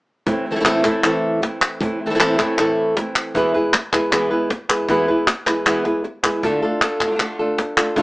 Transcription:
0.26 A2 E3 A3 C4 E4, muted nylon-string guitar stroke, cajon bass
0.46 A3 E4, cajon slap
0.51 E3 A3 C4 E4 A4
0.55 E3 A3 C4 E4 A4
0.60 E3 A3 C4 E4 A4
0.64 A2 E3 A3 C4 E4 A4, cajon slap, clap
0.75 E3 A3 C4 E4
0.80 E3 A3 C4 E4
0.84 A2 E3 A3 C4 E4 A4, cajon bass, clap
1.03 A2 E3 A3 C4 E4 A4, muted nylon-string guitar stroke, clap
1.42 E3 A3 C4 E4, muted nylon-string guitar stroke, cajon slap
1.62 cajon slap, clap
1.80 A2 E3 A3 C4 E4, muted nylon-string guitar stroke, cajon bass
2.00 A3 C4 E4
2.06 E3 A3 C4 E4 A4
2.10 E3 A3 C4 E4 A4
2.15 E3 A3 C4 E4 A4
2.19 A2 E3 A3 C4 E4 A4, cajon slap, clap
2.29 E3 A3 C4 E4
2.34 E3 A3 C4 E4
2.38 A2 E3 A3 C4 E4 A4, cajon bass, clap
2.58 A2 E3 A3 C4 E4 A4, muted nylon-string guitar stroke, cajon slap, clap
2.96 E3 A3 C4 E4, muted nylon-string guitar stroke, cajon slap
3.16 cajon slap, clap
3.34 E2 B2 E3 G#3 B3 E4 G#4 B4, cajon bass
3.54 E3 G#3 B3 E4 G#4 B4, cajon slap
3.73 muted nylon-string guitar stroke, cajon slap, clap
3.92 E3 G#3 B3 E4 G#4 B4, cajon bass, clap
4.11 E2 B2 E3 G#3 B3 E4 G#4 B4, cajon slap, clap
4.31 E3 G#3 B3 E4 G#4 B4
4.50 muted nylon-string guitar stroke, cajon slap
4.69 E3 G#3 B3 E4 G#4 B4, clap
4.88 E2 B2 E3 G#3 B3 E4 G#4 B4, cajon bass
5.08 E3 G#3 B3 E4 G#4 B4
5.27 muted nylon-string guitar stroke, cajon slap, clap
5.46 E3 G#3 B3 E4 G#4 B4, cajon slap, clap
5.65 E2 B2 E3 G#3 B3 E4 G#4 B4, cajon slap, clap
5.85 E3 G#3 B3 E4 G#4 B4, cajon slap
6.04 muted nylon-string guitar stroke
6.23 E3 G#3 B3 E4 G#4 B4, cajon bass, clap
6.42 D3 A3 D4 F4 A4, cajon bass
6.62 A3 D4 F4 A4, cajon slap
6.81 A3 D4 F4 A4, muted nylon-string guitar stroke, cajon slap, clap
7.00 A3 D4 F4, cajon bass, clap
7.06 D3 A3 D4 F4
7.11 D3 A3 D4 F4
7.15 D3 A3 D4 F4
7.20 D3 A3 D4 F4, muted nylon-string guitar stroke, cajon slap, clap
7.39 A3 D4 F4 A4
7.58 muted nylon-string guitar stroke, cajon slap
7.77 A3 D4 F4 A4, clap
7.96 D3 A3 D4 F4 A4, cajon bass

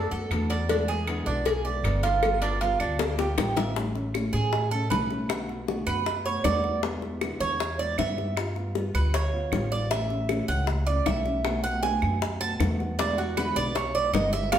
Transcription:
Already playing: D3 A4
0.11 F#2 A3 B3 F#4 A4
0.30 E2 B2 D3 A3 B3 F#4, cowbell, claves
0.50 A3 B3 F#4 D5, cowbell
0.69 B2 D3 G#3 B3 D4 E4, cowbell
0.88 G#3 B3 E4 G#4
1.07 B2 D3 G#3 B3 E4, cowbell, claves
1.26 B1 D4
1.45 G#4, muted nylon-string guitar stroke, cowbell
1.65 G#3 B3 E4 D5
1.83 G1 B2 D3 G#3 B3 E4, cowbell, claves
2.03 G#3 B3 E4 F4, cowbell
2.22 G3 B3 F4, cowbell, claves
2.42 B3 D4 F4, cowbell
2.61 G3 B3 F4, cowbell
2.80 D2 D4, claves
2.99 muted nylon-string guitar stroke, cowbell, high bongo
3.18 B3 F4 G4, high bongo
3.37 A1 G3 B3 F4, cowbell, low bongo, claves
3.57 B3 F4 E5, cowbell, low bongo
3.76 E3 A3 C#4 E4, high bongo
3.95 A3 C#4 E4, high bongo
4.14 E3 A3 C#4 E4, high bongo, claves
4.33 A2 G#4, high bongo
4.52 muted nylon-string guitar stroke, high bongo
4.71 A3 C#4 E4 A4
4.90 B1 E3 A3 C#4 E4 B4, high bongo, low bongo, claves
5.09 A3 C#4 E4, high bongo
5.28 B2 D3 A3 B3 F#4, high bongo, claves
5.48 A3 B3 F#4, high bongo
5.67 B2 D3 A3 B3 F#4, high bongo
5.87 F#2 B4, high bongo, claves
6.06 muted nylon-string guitar stroke, high bongo
6.25 A3 B3 F#4 C#5
6.44 E2 B2 D3 A3 B3 F#4 D5, high bongo, low bongo, claves
6.63 A3 B3 F#4, high bongo
6.82 B2 D3 G#3 B3 E4, high bongo
7.02 G#3 B3 E4, high bongo
7.21 B2 D3 G#3 B3 E4, high bongo, claves
7.40 E2 C#5, high bongo
7.60 muted nylon-string guitar stroke, high bongo
7.79 G#3 B3 E4 D5
7.97 G2 B2 D3 G#3 B3 E4 E5, high bongo, low bongo, claves
8.17 G#3 B3 E4, high bongo
8.37 G3 B3 F4, high bongo, claves
8.56 B3 F4, high bongo
8.75 G3 B3 F4, high bongo
8.94 D2 B4, high bongo, claves
9.14 C#5, muted nylon-string guitar stroke, high bongo
9.33 B3 F4
9.52 A1 G3 B3 F4, high bongo, low bongo, claves
9.71 B3 F4 D5, high bongo
9.91 E3 A3 C#4 E4 E5, high bongo
10.10 A3 C#4 E4, high bongo
10.29 E3 A3 C#4 E4, high bongo, claves
10.48 C#2 F#5, high bongo
10.67 muted nylon-string guitar stroke, high bongo
10.87 A3 C#4 E4 D5
11.06 B1 E3 A3 C#4 E4 E5, high bongo, low bongo, claves
11.25 A3 C#4 E4, high bongo
11.44 B2 D3 A3 B3 F#4, high bongo, claves
11.63 A3 B3 F#4 F#5, high bongo
11.82 B2 D3 A3 B3 F#4 G#5, high bongo
12.02 F#2, high bongo, claves
12.21 muted nylon-string guitar stroke, high bongo
12.41 A3 B3 F#4 A5
12.60 E2 B2 D3 A3 B3 F#4, high bongo, low bongo, claves
12.79 A3 B3 F#4, high bongo
12.98 B2 D3 G#3 B3 E4 D5, high bongo
13.17 G#3 B3 E4 F#4, high bongo
13.36 B2 D3 G#3 B3 E4 B4, high bongo, claves
13.56 B1 D5, high bongo
13.75 C#5, muted nylon-string guitar stroke, high bongo
13.94 G#3 B3 E4 D5
14.13 G1 B2 D3 G#3 B3 E4 D#5, high bongo, low bongo, claves
14.32 G#3 B3 E4 E5, high bongo
14.52 G3 B3 F4 F5, high bongo, claves

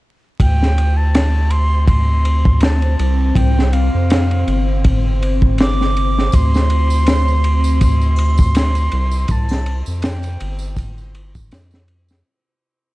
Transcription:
0.39 D2 C4 C5 G5, kick, ride
0.62 snare
0.78 ride
0.97 A5
1.15 snare, ride
1.50 C6, ride
1.88 C6, kick, ride
2.25 ride
2.45 kick
2.60 A5, snare, ride
2.82 ride
2.99 C2, ride
3.35 C2 G5, kick, ride
3.59 snare
3.73 F5, ride
3.94 F2
4.10 snare, ride
4.31 ride
4.47 G1, ride
4.84 kick, ride
5.22 ride
5.42 kick
5.58 D6, snare, ride
5.81 snare
5.97 ride
6.18 snare
6.32 D2 C6, kick, ride, tambourine
6.54 snare, tambourine
6.70 ride
6.90 tambourine
7.07 snare, ride, tambourine
7.28 tambourine
7.44 ride
7.64 tambourine
7.81 C6, kick, ride, tambourine
8.01 tambourine
8.16 ride, triangle
8.37 kick, tambourine
8.55 snare, ride, tambourine
8.75 ride, tambourine
8.92 C2, ride
9.11 tambourine
9.28 C2 A5, kick, ride, tambourine
9.49 snare, tambourine, triangle
9.66 ride
9.86 F2, tambourine
10.02 G5, snare, ride, tambourine
10.23 ride, tambourine
10.40 G1, ride
10.59 tambourine
10.76 kick, ride, tambourine
10.98 tambourine
11.15 ride
11.35 kick, tambourine
11.51 F2, snare, ride, tambourine
11.71 snare, tambourine
11.88 ride
12.09 snare, tambourine

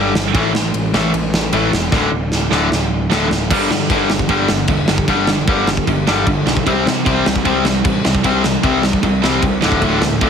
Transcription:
Already playing: G1 G2 D3 G3
0.15 G1, snare
0.34 A1 A2 E3 A3, kick, ride
0.55 A1, snare
0.74 A1, ride
0.93 A1 A2 E3 A3, snare
1.13 A1, ride
1.34 snare
1.53 A1 A2 E3 A3, ride
1.72 E1, snare
1.92 D1 D2 A2 D3, kick, snare
2.11 D1
2.32 D1, snare
2.51 D1 D2 A2 D3, snare
2.71 D1, snare
3.11 D1 D2 A2 D3, snare
3.30 D1, snare
3.51 G1 G2 D3 G3, kick, crash
3.70 G2 D3, snare
3.90 G1 G2 D3 G3, kick, crash
4.10 G1 G2 D3, snare
4.19 kick
4.29 G1 G2 D3 G3, kick, crash
4.48 G1 G2 D3, snare
4.67 E1 G2 D3, kick, crash
4.88 G1 G2 D3, snare
4.98 kick
5.08 G1 G2 D3 G3, kick, crash
5.27 G2 D3, snare
5.47 G1 G2 D3 G3, kick, crash
5.67 G2 D3, snare
5.77 kick
5.87 G1 G2 D3, kick, crash
6.07 G1 G2 D3 G3, snare
6.26 G1 G2 D3, kick, crash
6.46 B1 G2 D3, snare
6.57 kick
6.67 C2 C3 G3 C4, kick, crash
6.85 C3 G3, snare
7.06 C2 C3 G3 C4, kick, crash
7.26 C2 C3 G3, snare
7.36 kick
7.45 C2 C3 G3 C4, kick, crash
7.65 C2 C3 G3, snare
7.84 A1 C3 G3, kick, crash
8.05 C2 C3 G3, snare
8.15 kick
8.24 C2 C3 G3 C4, kick, crash
8.44 C3 G3, snare
8.63 C2 C3 G3 C4, kick, crash
8.83 C3 G3, snare
8.93 kick
9.03 C2 C3 G3, kick, crash
9.23 C2 C3 G3 C4, snare
9.43 C2 C3 G3, kick, crash
9.62 D1 D2 A2 D3, snare
9.72 kick
9.82 D1 D2 A2 D3, kick, crash
10.02 D2 A2, snare
10.21 D1 D2 A2 D3, kick, crash

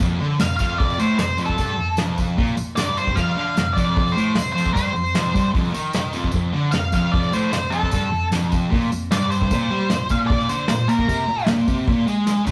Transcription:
0.00 F2, kick, open hi-hat
0.20 D3, open hi-hat
0.39 F2 F5, snare, open hi-hat, tambourine
0.57 F2 F5, kick, tambourine
0.78 D5, kick, open hi-hat
0.90 tambourine
0.98 A2 C5, open hi-hat, tambourine
1.18 F2 C5, snare, open hi-hat, tambourine
1.38 F2, open hi-hat, tambourine
1.46 A4, kick
1.57 G2, kick, open hi-hat, tambourine
1.78 F2, open hi-hat
1.97 F2, snare, open hi-hat, tambourine
2.18 kick, open hi-hat, tambourine
2.37 A#2, kick, open hi-hat
2.47 tambourine
2.57 F2, open hi-hat, tambourine
2.76 G2 D5, snare, open hi-hat, tambourine
2.97 C5, open hi-hat, tambourine
3.07 kick
3.16 F2 F5, kick, open hi-hat, tambourine
3.36 D3, open hi-hat
3.56 F2, snare, open hi-hat, tambourine
3.74 F2 D5, kick
3.78 open hi-hat, tambourine
3.97 kick, open hi-hat
4.08 tambourine
4.12 C5
4.16 A2, open hi-hat, tambourine
4.35 F2, snare, open hi-hat, tambourine
4.52 F2 C5
4.57 open hi-hat, tambourine
4.66 kick
4.74 G2 C5, kick, open hi-hat, tambourine
4.94 F2, open hi-hat, tambourine
5.06 tambourine
5.14 F2, snare, open hi-hat, tambourine
5.26 tambourine
5.34 G2, kick, open hi-hat, tambourine
5.45 tambourine
5.53 F2, kick, open hi-hat, tambourine
5.65 tambourine
5.72 D#3, tambourine
5.93 snare, open hi-hat, tambourine
6.13 F2, open hi-hat, tambourine
6.24 kick
6.32 F2, kick, open hi-hat, tambourine
6.53 D3, open hi-hat
6.72 F2 F5, snare, open hi-hat, tambourine
6.92 F2 F5, kick, open hi-hat, tambourine
7.12 D5, kick, open hi-hat
7.23 tambourine
7.31 A2 C5, tambourine
7.52 F2 C5, snare, open hi-hat, tambourine
7.63 tambourine
7.70 F2 A4, open hi-hat, tambourine
7.83 kick
7.91 G2, kick, open hi-hat, tambourine
8.12 F2, open hi-hat
8.32 F2, snare, open hi-hat, tambourine
8.52 kick, open hi-hat, tambourine
8.71 A#2, kick, open hi-hat
8.82 tambourine
8.90 F2, open hi-hat, tambourine
9.11 G2 D5, snare, open hi-hat, tambourine
9.23 tambourine
9.30 C5, open hi-hat, tambourine
9.42 kick
9.51 A#2, kick, open hi-hat, tambourine
9.70 G3, open hi-hat
9.90 A#2, snare, open hi-hat, tambourine
10.09 A#2 F5, kick, open hi-hat, tambourine
10.27 D5, kick, open hi-hat
10.40 tambourine
10.49 D3 C5, tambourine
10.68 A#2, snare, tambourine
10.80 tambourine
10.88 A#2 A#4, open hi-hat, tambourine
10.99 kick
11.08 C3, kick, open hi-hat, tambourine
11.28 A#2, open hi-hat, tambourine
11.39 tambourine
11.46 A#2, snare, open hi-hat, tambourine
11.59 tambourine
11.67 C3, kick, open hi-hat, tambourine
11.78 tambourine
11.87 A#2, kick, open hi-hat
12.06 G#3, open hi-hat, tambourine
12.27 snare, tambourine
12.37 tambourine
12.45 A#2, floor tom, tambourine

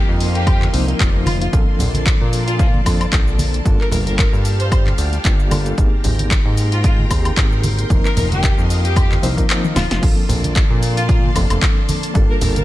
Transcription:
Already playing: F3 A#3 C4 D#4 A#4 D#5 F5 C6
0.09 F2
0.20 open hi-hat
0.35 G4, closed hi-hat
0.47 kick, closed hi-hat, high woodblock
0.62 clap, high conga
0.73 C2 F3 A#3 C4 D#4 C5, open hi-hat
0.87 F3 A#3 C4 D#4 A#4, closed hi-hat
0.99 F1 F3 A#3 C4 D#4 C5, kick, clap, closed hi-hat
1.26 F4, open hi-hat, high conga, high woodblock
1.41 F4, closed hi-hat
1.52 A#1 F3 A#3 C4 D4 A4 D5 A5, kick, closed hi-hat, shaker
1.79 A#1, open hi-hat, low conga, shaker
1.94 closed hi-hat, high conga, shaker
2.06 kick, clap, closed hi-hat, shaker
2.21 A#2
2.33 open hi-hat, shaker
2.47 F4, closed hi-hat, shaker
2.59 F4, kick, closed hi-hat, shaker
2.74 high conga
2.85 F2 F3 A#3 C4 D4 A4, kick, open hi-hat, high woodblock, shaker
3.01 closed hi-hat, high woodblock, shaker
3.12 A#1, kick, clap, closed hi-hat, shaker
3.28 shaker
3.39 open hi-hat, high conga, shaker
3.54 closed hi-hat, shaker
3.64 G1 G3 A#3 D4 F4 G4 A4 F5, kick, closed hi-hat, shaker
3.81 A#4, clap
3.92 G1 A#4, open hi-hat, low conga, shaker
4.06 A#4, closed hi-hat, high conga, shaker
4.19 A#4, kick, clap, closed hi-hat, shaker
4.33 G2, shaker
4.45 open hi-hat, shaker
4.59 C5, closed hi-hat, shaker
4.72 C5, kick, closed hi-hat, high woodblock, shaker
4.86 clap, high conga
4.98 D2, open hi-hat, shaker
5.13 closed hi-hat, shaker
5.24 G1 G3 A#3 D4 F4 G4, kick, clap, closed hi-hat, shaker
5.40 shaker
5.51 G3 A#3 D4 F4 A4, open hi-hat, high conga, high woodblock, shaker
5.66 closed hi-hat, shaker
5.77 G#1 A#3 D#4 G4 G#4 A#4 G5 A#5 C6, kick, closed hi-hat, shaker
6.04 G#1, open hi-hat, low conga, shaker
6.19 closed hi-hat, high conga, shaker
6.31 kick, clap, closed hi-hat, shaker
6.45 G#2
6.57 open hi-hat, shaker
6.72 F4, closed hi-hat, shaker
6.84 F4, kick, closed hi-hat, shaker
6.99 high conga
7.10 D#2 A#3 C4 D#4 G4 G#4, kick, open hi-hat, high woodblock, shaker
7.25 closed hi-hat, high woodblock, shaker
7.37 G#1, kick, clap, closed hi-hat, shaker
7.52 shaker
7.64 open hi-hat, high conga, shaker
7.79 closed hi-hat, shaker
7.89 F1 F3 A#3 C4 D#4 A#4 D#5 F5, kick, closed hi-hat, shaker
8.05 A#4, clap, shaker
8.16 F1 A#4, open hi-hat, low conga, shaker
8.31 G4, closed hi-hat, high conga, shaker
8.43 kick, clap, closed hi-hat, shaker
8.58 F2, shaker
8.70 open hi-hat, shaker
8.85 G4, closed hi-hat, shaker
8.96 kick, closed hi-hat, high woodblock, shaker
9.11 clap, high conga, shaker
9.23 C2 F3 A#3 C4 D#4 C5, open hi-hat, shaker
9.37 F3 A#3 C4 D#4 A#4, kick, closed hi-hat, shaker
9.48 F3 A#3 C4 D#4 C5, clap, closed hi-hat, shaker
9.64 high tom, shaker
9.76 D#1 F4, snare, open hi-hat, high conga, high woodblock, shaker
9.91 F1 F4, snare, closed hi-hat, shaker
10.02 A#1 F3 A#3 C4 D4 A4 D5 A5 C6, kick, closed hi-hat, crash, shaker
10.29 A#1, open hi-hat, low conga, shaker
10.44 closed hi-hat, high conga, shaker
10.56 kick, clap, closed hi-hat, shaker
10.70 A#2
10.83 open hi-hat, shaker
10.97 F4, closed hi-hat, shaker
11.09 F4, kick, closed hi-hat, shaker
11.24 high conga
11.34 F1 F3 A#3 C4 D4 A4, kick, open hi-hat, high woodblock, shaker
11.50 F1, closed hi-hat, high woodblock, shaker
11.62 kick, clap, closed hi-hat, shaker
11.89 open hi-hat, high conga, shaker
12.03 closed hi-hat, shaker
12.14 G1 G3 A#3 D4 F4 G4 A4 F5, kick, closed hi-hat, shaker
12.30 A#4
12.41 G1 A#4, open hi-hat, low conga, shaker
12.56 A#4, closed hi-hat, high conga, shaker

